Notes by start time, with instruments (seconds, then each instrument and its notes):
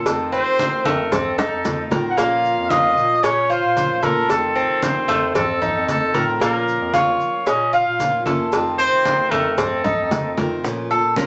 Already playing: cuban tres A4
0.05 bass clarinet F2, steel-string acoustic guitar C3 D#3 A3 C4 F4, cowbell, high conga, maracas
0.32 cuban tres C4, trumpet C5, high conga, maracas
0.59 cowbell, high conga, maracas
0.85 bass clarinet F2, cuban tres A3, trumpet A#4, cowbell, high conga, maracas
1.12 bass clarinet F2, cuban tres C4, trumpet A4, muted steel-string acoustic guitar stroke, cowbell, high bongo, high conga, low conga, maracas
1.38 cuban tres D#4, high bongo, high conga, maracas
1.52 bass clarinet F2
1.64 bass clarinet F2, steel-string acoustic guitar D#3 A3 C4 F4, cowbell, low bongo, high conga, maracas
1.91 bass clarinet A2, steel-string acoustic guitar D#3 A3 C4 F4, cuban tres A#4, cowbell, low bongo, high conga, maracas
2.10 trumpet F#5
2.17 bass clarinet A#2, steel-string acoustic guitar F3 A#3 C#4 F4, cuban tres A#3, trumpet F5, cowbell, high conga, maracas
2.44 high conga, maracas
2.58 bass clarinet F2
2.70 cuban tres F4, trumpet D#5, cowbell, high conga, maracas
2.97 bass clarinet A#2, high conga, maracas
3.23 bass clarinet A#2, cuban tres C#4, trumpet C#5, muted steel-string acoustic guitar stroke, cowbell, high conga, maracas
3.50 cuban tres F4, trumpet C5, high conga, maracas
3.63 bass clarinet A#2
3.76 steel-string acoustic guitar F3 A#3 C#4 F4, cowbell, high conga, maracas
4.02 bass clarinet A#2, steel-string acoustic guitar A#3 C#4 F4, cuban tres A4, trumpet A#4, cowbell, high conga, maracas
4.28 bass clarinet F2, steel-string acoustic guitar C3 D#3 A3 C4 F4, trumpet A4, cowbell, high conga, maracas
4.55 cuban tres C4, high conga, maracas
4.69 bass clarinet C3
4.82 trumpet C5, cowbell, high conga, maracas
5.08 bass clarinet F2, cuban tres A3, cowbell, high conga, maracas
5.34 bass clarinet F2, cuban tres C4, trumpet A4, muted steel-string acoustic guitar stroke, cowbell, high conga, low conga, maracas
5.62 cuban tres D#4, high conga, low conga, maracas
5.74 bass clarinet F2
5.87 steel-string acoustic guitar D#3 A3 C4 F4, trumpet A4, cowbell, high conga, maracas
6.14 bass clarinet A2, steel-string acoustic guitar D#3 A3 C4 F4, cuban tres A#4, cowbell, high conga, maracas
6.40 bass clarinet A#2, steel-string acoustic guitar F3 A#3 C#4 F4, cuban tres A#3, trumpet A#4, cowbell, high conga, maracas
6.67 high conga, maracas
6.80 bass clarinet F2
6.94 cuban tres F4, trumpet C#5, cowbell, high conga, maracas
7.20 high conga, maracas
7.46 bass clarinet A#2, cuban tres C#4, trumpet D#5, muted steel-string acoustic guitar stroke, cowbell, high conga, maracas
7.73 cuban tres F4, trumpet F5, high conga, maracas
7.86 bass clarinet A#2
7.99 steel-string acoustic guitar F3 A#3 C#4 F4, cowbell, high conga, maracas
8.26 bass clarinet F#2, steel-string acoustic guitar A#3 C#4 F4, cuban tres A4, cowbell, high conga, maracas
8.52 bass clarinet F2, steel-string acoustic guitar C3 D#3 A3 C4 F4, cowbell, high conga, maracas
8.78 cuban tres C4, trumpet C5, high conga, maracas
8.92 bass clarinet C3
9.05 cowbell, high conga, maracas
9.30 bass clarinet F2, cuban tres A3, trumpet A#4, cowbell, high conga, maracas
9.58 bass clarinet F2, cuban tres C4, trumpet A4, muted steel-string acoustic guitar stroke, cowbell, high conga, low conga, maracas
9.84 cuban tres D#4, high bongo, high conga, low conga, maracas
9.97 bass clarinet F2
10.11 steel-string acoustic guitar D#3 A3 C4 F4, cowbell, low bongo, high conga, maracas
10.37 bass clarinet F2, steel-string acoustic guitar D#3 A3 C4 F4, cuban tres A#4, cowbell, low bongo, high conga, maracas
10.63 bass clarinet A#2, steel-string acoustic guitar F3 A#3 C#4 F4, high bongo, high conga, maracas
10.90 steel-string acoustic guitar A#3 C#4 F4, cuban tres A4, high conga, maracas
11.03 bass clarinet A#2
11.16 steel-string acoustic guitar F3 A#3 C#4 F4, cuban tres A#4, high bongo, high conga, maracas